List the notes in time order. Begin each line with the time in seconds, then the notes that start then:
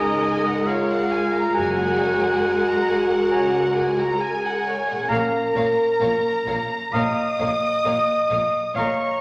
Already playing: C#2 F#2 G#3 C#4 D#4 A#4 D#5 A#5
0.00 A#5
0.21 G#5
0.45 F#5
0.65 F4 C#5 F5
0.90 F#5
1.11 G#5
1.34 A#5
1.53 F#1 F#2 G#3 F#4 A#4 F#5 G#5 A#5
1.80 F#5
2.01 C#5
2.23 F#5
2.44 G#5
2.68 A#5
2.88 G#5
3.11 F#5
3.30 C#2 C#5 G#5 A#5
3.53 F#5
3.76 G#5
3.99 A#5
4.19 G#4 G#5
4.44 F#5
4.68 C#5
4.89 A#2 F#5
4.95 A#3
5.00 C#4
5.04 F4
5.09 A#1 A#2 A#3 A#4 C#5 F5 A#5
5.54 A#1 A#2 A#3 A#4 C#5 F5
6.00 A#1 A#2 A#3 A#4 C#5 F5
6.46 A#1 A#2 A#3 A#4 C#5 F5
6.93 A#1 A#2 A#3 A#4 C#5 D#5 F5 A#5 D#6
7.38 A#1 A#2 A#3 A#4 C#5 F5
7.85 A#1 A#2 A#3 A#4 C#5 F5
8.29 A#1 A#2 A#3 A#4 C#5 F5
8.74 A#1 A#2 A#3 A#4 C#5 F5 A#5 C#6